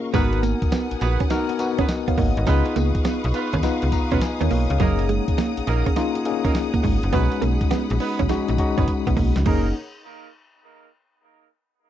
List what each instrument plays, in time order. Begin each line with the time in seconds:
Already playing: tine electric piano A#3 C#4 F4 G#4 A#4, string section F5 C#6
0.14 fm bass G#1, clean electric guitar G#3, tine electric piano B3 D#4 F#4 A#4, string section B3 F#5 G#5 D#6, horn section B3 F#4 G#4 B4, kick, closed hi-hat, tambourine
0.33 muted clean electric guitar stroke, closed hi-hat
0.43 clean electric guitar A#3, closed hi-hat, tambourine
0.62 kick, closed hi-hat
0.72 clean electric guitar B3, snare, closed hi-hat, tambourine
0.91 fm bass A#1, closed hi-hat
1.01 fm bass A#1, horn section B3 F#4 G#4 B4, muted clean electric guitar stroke, closed hi-hat, tambourine
1.20 clean electric guitar C#4, kick, closed hi-hat
1.30 tine electric piano B3 D#4 F#4 A#4, clean electric guitar D#4, snare, closed hi-hat, tambourine
1.49 muted clean electric guitar stroke, closed hi-hat
1.59 tine electric piano B3 D#4 F#4 B4, closed hi-hat, tambourine
1.78 horn section B3 F#4 G#4 B4, clean electric guitar C#4, kick, closed hi-hat
1.88 tine electric piano B4 D#5, muted clean electric guitar stroke, snare, closed hi-hat, tambourine
2.08 clean electric guitar B3, tine electric piano C#5 F5, kick, closed hi-hat
2.18 fm bass G#1, clean electric guitar A#3, tine electric piano D#5 F#5, kick, open hi-hat
2.37 fm bass G#1, tine electric piano B4 D#5, closed hi-hat
2.46 fm bass C#2, tine electric piano B3 D#4 F4 G#4, horn section B3 D#4 F4 B4, clean electric guitar C#4, string section B4 F5 C#6, kick, closed hi-hat, tambourine
2.66 muted clean electric guitar stroke, closed hi-hat
2.76 fm bass C#2, clean electric guitar A#3, closed hi-hat, tambourine
2.95 kick, closed hi-hat
3.05 clean electric guitar B3, snare, closed hi-hat, tambourine
3.24 fm bass B1, closed hi-hat
3.34 horn section B3 D#4 F4 B4, muted clean electric guitar stroke, closed hi-hat, tambourine
3.53 fm bass D#2, clean electric guitar C#4, kick, closed hi-hat
3.63 fm bass C#2, tine electric piano B3 D#4 F4 B4, clean electric guitar D#4, snare, closed hi-hat, tambourine
3.82 fm bass C#2, muted clean electric guitar stroke, closed hi-hat
3.92 tine electric piano A#5, kick, closed hi-hat, tambourine
4.11 fm bass B1, horn section B3 D#4 F4 B4, clean electric guitar C#4, kick, closed hi-hat
4.21 tine electric piano B4 D#5 G#5, muted clean electric guitar stroke, snare, closed hi-hat, tambourine
4.41 fm bass D#2, clean electric guitar B3, tine electric piano A#4 C#5, closed hi-hat
4.51 fm bass B1, clean electric guitar A#3, tine electric piano F5, open hi-hat
4.70 fm bass C#2, tine electric piano C#5 F5, closed hi-hat
4.80 fm bass F#1, clean electric guitar F#3, tine electric piano A#3 C#4 D#4 G#4, horn section A#3 D#4 G#4 A#4, string section G#4 F#5 A#5, kick, closed hi-hat
4.99 muted clean electric guitar stroke, closed hi-hat
5.09 clean electric guitar G#3, closed hi-hat
5.28 kick, closed hi-hat
5.38 clean electric guitar A#3, snare, closed hi-hat
5.57 fm bass A#1, closed hi-hat
5.67 fm bass A#1, horn section A#3 D#4 G#4 A#4, muted clean electric guitar stroke, closed hi-hat
5.86 clean electric guitar C#4, kick, closed hi-hat
5.96 tine electric piano A#3 C#4 D#4 F4, clean electric guitar D#4, snare, closed hi-hat
6.15 muted clean electric guitar stroke, closed hi-hat
6.25 tine electric piano A#3 C#4 D#4 G#4, closed hi-hat
6.44 horn section A#3 D#4 G#4 A#4, clean electric guitar C#4, kick, closed hi-hat
6.54 muted clean electric guitar stroke, snare, closed hi-hat
6.74 clean electric guitar A#3, kick, closed hi-hat
6.83 fm bass G#1, clean electric guitar G#3, kick, open hi-hat
7.03 fm bass F#1, closed hi-hat
7.13 fm bass B1, tine electric piano G#3 C#4 D#4 F#4, clean electric guitar B3, horn section B3 D#4 G#4 B4, string section B5, kick, closed hi-hat
7.32 muted clean electric guitar stroke, closed hi-hat
7.42 fm bass B1, clean electric guitar A#3, closed hi-hat
7.61 kick, closed hi-hat
7.71 clean electric guitar B3, snare, closed hi-hat
7.90 fm bass A#1, closed hi-hat
8.00 horn section B3 D#4 G#4 B4, muted clean electric guitar stroke, open hi-hat
8.19 fm bass B1, clean electric guitar C#4, kick, closed hi-hat
8.29 fm bass A#1, tine electric piano G#3 C#4 D#4 F#4, clean electric guitar D#4, snare, closed hi-hat
8.48 fm bass A#1, muted clean electric guitar stroke, closed hi-hat
8.58 tine electric piano G#3 C#4 D#4 F#4, kick, closed hi-hat
8.77 fm bass G#1, horn section B3 D#4 G#4 B4, clean electric guitar C#4, kick, closed hi-hat
8.88 muted clean electric guitar stroke, kick, closed hi-hat
9.07 fm bass B1, clean electric guitar B3, kick, closed hi-hat
9.17 fm bass B1, clean electric guitar A#3, kick, open hi-hat
9.36 fm bass C#2, snare, closed hi-hat
9.45 fm bass F#1, clean electric guitar A#3, horn section A#3 D#4 G#4 A#4, tine electric piano A#3 C#4 D#4 G#4, string section D#4 G#4 A#4 C#5 F#5, kick, crash